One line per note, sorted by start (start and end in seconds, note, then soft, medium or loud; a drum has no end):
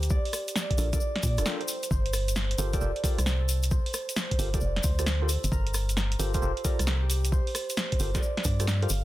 0.00 0.18 D2 medium
0.00 2.16 G4 medium
0.00 1.55 A#4 medium
0.00 1.11 C5 medium
0.00 closed hi-hat medium
0.00 shaker medium
0.10 0.55 D5 loud
0.10 kick loud
0.10 shaker soft
0.25 open hi-hat medium
0.33 cross-stick medium
0.33 open hi-hat loud
0.33 shaker loud
0.48 closed hi-hat medium
0.48 shaker soft
0.56 0.93 D5 medium
0.56 snare loud
0.56 shaker soft
0.70 kick medium
0.70 closed hi-hat medium
0.78 0.96 A#1 loud
0.78 0.87 D4 medium
0.78 0.87 F4 medium
0.78 0.87 A4 medium
0.78 0.87 A#4 medium
0.78 0.87 D5 loud
0.78 open hi-hat loud
0.78 shaker medium
0.93 0.98 D4 medium
0.93 0.98 F4 medium
0.93 0.98 A4 medium
0.93 0.98 A#4 medium
0.93 1.23 D5 medium
0.93 0.98 D5 medium
0.93 kick loud
0.93 closed hi-hat medium
0.93 shaker medium
1.00 shaker soft
1.16 snare medium
1.16 closed hi-hat soft
1.23 1.40 A#2 medium
1.23 2.73 D5 medium
1.23 kick loud
1.23 open hi-hat loud
1.23 shaker loud
1.38 1.44 F1 medium
1.38 1.45 D4 medium
1.38 1.45 F4 medium
1.38 1.45 A4 medium
1.38 1.45 A#4 medium
1.38 1.45 D5 loud
1.38 cross-stick medium
1.38 closed hi-hat medium
1.38 shaker medium
1.46 1.61 D4 medium
1.46 1.61 F4 medium
1.46 1.61 A4 medium
1.46 1.61 A#4 medium
1.46 1.61 G5 medium
1.46 snare loud
1.46 shaker soft
1.61 1.90 C5 medium
1.61 closed hi-hat soft
1.68 open hi-hat loud
1.68 shaker loud
1.83 closed hi-hat medium
1.83 shaker medium
1.91 2.55 G1 loud
1.91 2.35 C5 loud
1.91 kick loud
1.91 shaker soft
2.06 closed hi-hat medium
2.13 cross-stick medium
2.13 open hi-hat loud
2.13 shaker medium
2.28 closed hi-hat medium
2.28 shaker medium
2.36 3.03 C5 medium
2.36 snare loud
2.36 shaker soft
2.51 closed hi-hat medium
2.58 2.77 G1 loud
2.58 2.71 F4 medium
2.58 2.71 G4 medium
2.58 2.71 A4 medium
2.58 2.71 A#4 medium
2.58 2.71 C5 loud
2.58 open hi-hat loud
2.58 shaker medium
2.73 2.80 F4 medium
2.73 2.80 G4 medium
2.73 2.80 A4 medium
2.73 2.80 A#4 medium
2.73 2.80 C5 medium
2.73 4.54 D5 medium
2.73 kick loud
2.73 closed hi-hat medium
2.73 shaker medium
2.81 2.92 F1 loud
2.81 2.90 F4 medium
2.81 2.91 G4 medium
2.81 2.90 A4 medium
2.81 2.90 A#4 medium
2.81 2.90 C5 medium
2.81 shaker soft
2.96 closed hi-hat soft
3.04 3.19 F4 loud
3.04 3.19 G4 medium
3.04 3.19 A4 medium
3.04 3.19 A#4 medium
3.04 3.71 C5 medium
3.04 3.19 D5 loud
3.04 kick loud
3.04 open hi-hat loud
3.04 shaker medium
3.18 3.79 C2 medium
3.18 cross-stick medium
3.18 closed hi-hat medium
3.18 shaker medium
3.26 snare loud
3.26 shaker soft
3.41 5.21 A4 medium
3.49 open hi-hat loud
3.49 shaker loud
3.63 closed hi-hat medium
3.63 shaker medium
3.71 4.16 C5 loud
3.71 kick loud
3.71 shaker soft
3.86 open hi-hat medium
3.94 cross-stick medium
3.94 open hi-hat loud
3.94 shaker medium
4.09 closed hi-hat medium
4.09 shaker medium
4.16 4.84 C5 medium
4.16 snare loud
4.16 shaker soft
4.31 kick medium
4.31 closed hi-hat medium
4.39 4.57 G1 loud
4.39 4.48 F4 medium
4.39 4.48 G4 medium
4.39 4.48 A4 medium
4.39 4.48 A#4 medium
4.39 4.48 C5 loud
4.39 open hi-hat loud
4.39 shaker medium
4.54 4.59 F4 medium
4.54 4.59 G4 medium
4.54 4.59 A4 medium
4.54 4.59 A#4 medium
4.54 4.59 C5 medium
4.54 6.39 D5 loud
4.54 kick loud
4.54 closed hi-hat medium
4.54 shaker soft
4.60 4.80 F1 medium
4.60 shaker soft
4.76 snare medium
4.76 closed hi-hat soft
4.83 5.37 D2 medium
4.83 6.34 C5 medium
4.83 kick loud
4.83 open hi-hat loud
4.83 shaker medium
4.99 5.04 F4 medium
4.99 5.04 G4 medium
4.99 5.04 A4 medium
4.99 5.04 A#4 medium
4.99 5.04 C5 medium
4.99 cross-stick medium
4.99 closed hi-hat medium
4.99 shaker medium
5.06 snare loud
5.06 shaker soft
5.22 5.29 F4 medium
5.22 5.29 G4 medium
5.22 5.58 A4 loud
5.22 5.29 A4 medium
5.22 5.29 A#4 medium
5.22 5.29 C5 medium
5.29 open hi-hat loud
5.29 shaker medium
5.44 5.50 G1 medium
5.44 closed hi-hat medium
5.44 shaker medium
5.52 6.16 G1 loud
5.52 5.97 A#4 loud
5.52 kick loud
5.52 shaker soft
5.67 closed hi-hat medium
5.74 cross-stick medium
5.74 open hi-hat loud
5.74 shaker medium
5.89 closed hi-hat medium
5.89 shaker soft
5.97 6.64 A#4 medium
5.97 snare loud
5.97 shaker soft
6.12 closed hi-hat medium
6.19 6.38 G1 loud
6.19 6.32 F4 medium
6.19 6.32 G4 medium
6.19 6.32 A4 medium
6.19 6.32 A#4 medium
6.19 6.32 C5 loud
6.19 open hi-hat loud
6.19 shaker medium
6.34 6.41 F4 medium
6.34 6.41 G4 medium
6.34 6.41 A4 medium
6.34 6.41 A#4 medium
6.34 7.32 C5 loud
6.34 6.41 C5 loud
6.34 kick loud
6.34 closed hi-hat medium
6.34 shaker medium
6.42 6.53 F1 loud
6.42 6.51 F4 medium
6.42 6.51 G4 medium
6.42 6.51 A4 medium
6.42 6.51 A#4 medium
6.42 6.51 C5 medium
6.42 shaker soft
6.57 closed hi-hat soft
6.65 6.79 F4 loud
6.65 6.79 G4 medium
6.65 6.79 A4 medium
6.65 6.79 A#4 medium
6.65 8.77 A#4 medium
6.65 6.79 D5 loud
6.65 kick loud
6.65 open hi-hat loud
6.65 shaker medium
6.79 7.40 C2 medium
6.79 cross-stick medium
6.79 closed hi-hat medium
6.79 shaker medium
6.87 snare loud
6.87 shaker soft
7.02 9.04 G4 medium
7.10 open hi-hat loud
7.10 shaker medium
7.25 closed hi-hat medium
7.25 shaker medium
7.32 7.77 C5 loud
7.32 kick loud
7.32 shaker soft
7.47 open hi-hat medium
7.55 cross-stick medium
7.55 open hi-hat loud
7.55 shaker medium
7.70 closed hi-hat medium
7.70 shaker soft
7.77 9.04 C5 medium
7.77 snare loud
7.77 shaker soft
7.92 kick medium
7.92 closed hi-hat medium
7.99 8.18 G1 loud
7.99 8.09 F4 medium
7.99 8.09 G4 medium
7.99 8.09 A4 medium
7.99 8.09 A#4 medium
7.99 8.09 C5 loud
7.99 open hi-hat loud
7.99 shaker medium
8.15 8.20 F4 medium
8.15 8.20 G4 medium
8.15 8.20 A4 medium
8.15 8.20 A#4 medium
8.15 8.20 C5 medium
8.15 8.45 D5 loud
8.15 kick loud
8.15 snare medium
8.15 closed hi-hat medium
8.15 shaker soft
8.23 shaker soft
8.37 snare medium
8.37 closed hi-hat soft
8.44 8.87 G2 loud
8.44 9.04 D5 medium
8.44 kick loud
8.44 open hi-hat loud
8.44 shaker medium
8.60 8.65 F4 medium
8.60 8.65 G4 medium
8.60 8.65 A4 medium
8.60 8.65 A#4 medium
8.60 8.65 C5 medium
8.60 cross-stick medium
8.60 closed hi-hat medium
8.60 shaker medium
8.67 snare loud
8.67 shaker soft
8.82 8.90 F4 medium
8.82 8.90 G4 medium
8.82 8.90 A4 medium
8.82 8.90 A#4 medium
8.82 8.90 C5 medium
8.82 9.04 F5 medium
8.82 closed hi-hat soft
8.89 9.04 G1 medium
8.89 open hi-hat loud
8.89 shaker medium